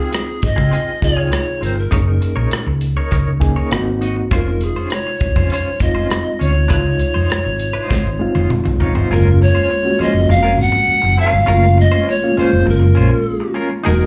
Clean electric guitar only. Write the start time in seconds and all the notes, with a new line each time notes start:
Already playing: F4 G#4
0.00 C4
0.11 muted clean electric guitar stroke
0.26 muted clean electric guitar stroke
0.56 C4 F4 G#4
0.71 C4 F4 G#4
1.02 muted clean electric guitar stroke
1.17 C4 F4 G#4
1.31 muted clean electric guitar stroke
1.61 C4 F4 A#4
1.76 muted clean electric guitar stroke
1.91 D#4 A#4 C#5
2.06 muted clean electric guitar stroke
2.21 muted clean electric guitar stroke
2.36 D#4 A#4 C#5
2.51 muted clean electric guitar stroke
2.67 muted clean electric guitar stroke
2.97 D#4 A#4 C#5
3.11 D#4 A#4 C#5
3.41 muted clean electric guitar stroke
3.56 D#4 A#4 C#5
3.71 muted clean electric guitar stroke
4.01 D#4 F#4 D#5
4.16 muted clean electric guitar stroke
4.31 C#4 F4 C5
4.47 muted clean electric guitar stroke
4.62 muted clean electric guitar stroke
4.76 C#4 F4 C5
4.92 muted clean electric guitar stroke
5.07 muted clean electric guitar stroke
5.36 C#4 F4 C5
5.52 C#4 F4 C5
5.80 muted clean electric guitar stroke
5.95 C#4 F4 C5
6.09 muted clean electric guitar stroke
6.39 C#4 F4 C#5
6.53 muted clean electric guitar stroke
6.68 D#4 F4 C5
6.84 muted clean electric guitar stroke
6.99 muted clean electric guitar stroke
7.14 D#4 F4 C5
7.29 muted clean electric guitar stroke
7.44 muted clean electric guitar stroke
7.73 D#4 F4 C5
7.89 D#4 F4 C5
8.19 muted clean electric guitar stroke
8.35 D#4 F4 C5
8.50 muted clean electric guitar stroke
8.64 muted clean electric guitar stroke
8.80 D#4 F4 C#5
8.95 D#4 F4 C5
9.11 C#4 F4 A#4
9.41 muted clean electric guitar stroke
9.55 C#4 F4 C5
9.70 muted clean electric guitar stroke
9.99 C#4 F4 C5
10.14 muted clean electric guitar stroke
10.29 muted clean electric guitar stroke
10.43 C#4 F4 A#4
10.57 muted clean electric guitar stroke
10.72 muted clean electric guitar stroke
11.02 muted clean electric guitar stroke
11.18 C#4 F4 A#4
11.33 muted clean electric guitar stroke
11.46 C#4 F4 A#4
11.77 muted clean electric guitar stroke
11.92 C#4 F4 C5
12.08 muted clean electric guitar stroke
12.37 C#4 F4 C5
12.66 muted clean electric guitar stroke
12.80 muted clean electric guitar stroke
12.95 C#4 F4 C5
13.10 muted clean electric guitar stroke
13.40 muted clean electric guitar stroke
13.54 C#4 F4 A#4
13.70 muted clean electric guitar stroke
13.84 D#4 G#4 A#4